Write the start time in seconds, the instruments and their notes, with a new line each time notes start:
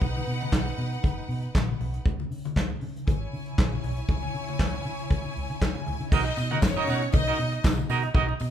Already playing: string section D#4 B4 F#5
0.01 fingered electric bass B1, kick, closed hi-hat, low conga
0.16 muted conga, high conga
0.27 fingered electric bass B2, open hi-hat
0.40 closed hi-hat, high conga
0.51 fingered electric bass B1, kick, snare, clap, closed hi-hat
0.66 muted conga, low conga
0.77 fingered electric bass B2, open hi-hat
0.92 closed hi-hat
1.03 fingered electric bass F#1, kick, closed hi-hat, high conga
1.29 fingered electric bass B2, open hi-hat
1.42 closed hi-hat
1.55 fingered electric bass A#1, kick, snare, clap, closed hi-hat
1.69 high conga
1.80 fingered electric bass B1, open hi-hat, low conga
1.94 closed hi-hat
2.06 fingered electric bass C#2, kick, closed hi-hat, low conga
2.20 muted conga, high conga
2.31 fingered electric bass C#3, open hi-hat
2.45 closed hi-hat, high conga
2.56 fingered electric bass C#2, kick, snare, clap, closed hi-hat
2.70 muted conga, low conga
2.81 fingered electric bass C#3, open hi-hat
2.96 closed hi-hat
3.07 fingered electric bass G#1, string section E4 C#5 G#5, kick, closed hi-hat, muted conga, high conga
3.33 fingered electric bass C#3, open hi-hat
3.46 closed hi-hat
3.58 fingered electric bass A#1, kick, snare, clap, closed hi-hat
3.72 muted conga, high conga
3.84 fingered electric bass B1, open hi-hat, low conga
3.97 closed hi-hat
4.08 fingered electric bass C#2, kick, closed hi-hat, low conga
4.23 muted conga, high conga
4.34 fingered electric bass C#3, open hi-hat
4.48 closed hi-hat, high conga
4.59 fingered electric bass C#2, kick, snare, clap, closed hi-hat
4.73 muted conga, low conga
4.84 fingered electric bass C#3, open hi-hat
4.99 closed hi-hat
5.10 fingered electric bass C#2, kick, closed hi-hat, high conga
5.24 fingered electric bass C#3
5.37 fingered electric bass C#2, open hi-hat
5.49 fingered electric bass C#3, closed hi-hat
5.60 fingered electric bass C#2, kick, snare, clap, closed hi-hat, muted conga
5.75 fingered electric bass C#3, muted conga, high conga
5.86 fingered electric bass C#2, open hi-hat, low conga
6.00 fingered electric bass C#3, closed hi-hat
6.12 fingered electric bass B1, string section D#4 D#5, clean electric guitar D#4 F#4 A#4 D#5, kick, crash, tambourine, muted conga, low conga
6.25 muted clean electric guitar stroke
6.37 fingered electric bass B2, muted clean electric guitar stroke, open hi-hat, tambourine
6.51 clean electric guitar D#4 F#4 A#4 F#5, closed hi-hat, high conga
6.61 fingered electric bass F#1, string section C#4 C#5, muted clean electric guitar stroke, kick, snare, clap, closed hi-hat, tambourine
6.76 clean electric guitar D#4 F#4 A#4 D#5, muted conga, low conga
6.87 fingered electric bass B2, clean electric guitar D#4 F#4 A#4 F#5, open hi-hat, tambourine
7.02 muted clean electric guitar stroke, closed hi-hat
7.12 fingered electric bass B1, string section D#4 D#5, muted clean electric guitar stroke, kick, closed hi-hat, tambourine, muted conga, high conga
7.27 clean electric guitar D#4 F#4 A#4 D#5, muted conga
7.39 fingered electric bass B2, muted clean electric guitar stroke, open hi-hat, tambourine
7.52 muted clean electric guitar stroke, closed hi-hat
7.64 fingered electric bass B1, muted clean electric guitar stroke, kick, snare, clap, closed hi-hat, tambourine, muted conga
7.78 muted clean electric guitar stroke, muted conga, high conga
7.89 fingered electric bass B2, clean electric guitar D#4 F#4 A#4 D#5, open hi-hat, tambourine
8.03 muted clean electric guitar stroke, closed hi-hat
8.14 fingered electric bass B1, clean electric guitar D#4 F#4 A#4 D#5, kick, closed hi-hat, muted conga, low conga
8.28 muted clean electric guitar stroke, muted conga
8.40 fingered electric bass B2, muted clean electric guitar stroke, open hi-hat, tambourine